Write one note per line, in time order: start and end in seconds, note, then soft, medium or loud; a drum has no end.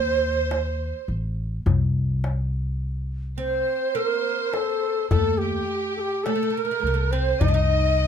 0.00 0.91 D#2 medium
0.00 1.05 C4 medium
0.00 1.08 C5 medium
0.23 darbuka ka soft
0.51 darbuka tek medium
1.08 1.57 A1 medium
1.08 darbuka ka soft
1.66 3.61 C2 medium
1.66 darbuka dum medium
2.24 darbuka tek medium
3.38 3.97 C4 medium
3.38 3.97 C5 medium
3.38 5.07 C5 medium
3.95 5.11 A#3 medium
3.95 4.54 A#4 medium
4.53 5.09 A4 medium
4.53 darbuka tek medium
5.10 5.60 D#2 medium
5.10 6.25 A3 medium
5.10 5.39 A4 medium
5.10 5.40 A4 medium
5.10 darbuka dum medium
5.38 5.95 G4 medium
5.38 6.22 G4 medium
5.38 darbuka ka soft
5.96 6.01 A4 medium
5.96 darbuka ka soft
6.00 6.25 G4 medium
6.24 6.34 A3 medium
6.24 6.55 A4 medium
6.24 darbuka tek medium
6.36 6.41 A3 soft
6.43 6.49 A3 medium
6.50 6.56 A3 soft
6.50 7.13 A#4 medium
6.55 6.64 A3 soft
6.55 7.12 A#4 medium
6.65 6.70 A3 soft
6.71 6.78 A3 soft
6.80 7.32 C2 medium
6.80 6.86 A3 soft
6.87 6.93 A3 medium
6.94 7.01 A3 soft
7.11 7.40 C4 medium
7.11 7.41 C5 medium
7.40 8.07 C2 medium
7.40 7.47 D#4 medium
7.40 8.07 D#5 medium
7.40 darbuka dum medium
7.48 7.54 D4 medium
7.54 8.07 D#4 medium